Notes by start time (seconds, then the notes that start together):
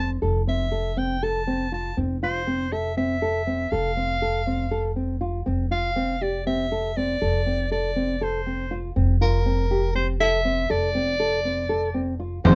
Already playing: F1 C4
0.00 A5
0.22 F1 A4
0.47 C4 E5
0.72 A4
0.97 C4 G5
1.23 A4 A5
1.47 C4
1.72 F4 A5
1.97 F1 C4
2.23 F4 C5
2.47 C4
2.72 A4 E5
2.97 C4 E5
3.22 A4
3.47 C4
3.71 F1 A4 F5
3.97 C4
4.22 A4
4.47 C4
4.71 A4
4.96 C4
5.21 F4
5.46 F1 C4
5.71 F4 F5
5.96 C4
6.21 G4 D5
6.47 C4 E5
6.72 A4
6.97 C4 D5
7.22 F1 A4
7.46 C4
7.71 A4 D5
7.96 C4
8.21 A4 C5
8.47 C4
8.71 F4
8.96 F1 C4
9.21 F4 A#4
9.46 C4
9.71 G4
9.95 C4 C5
10.20 A4 E5
10.45 C4
10.70 F1 A4 D5
10.95 C4
11.20 A4
11.45 C4
11.69 A4
11.94 C4
12.20 F4
12.44 F1 C4 C5, frame drum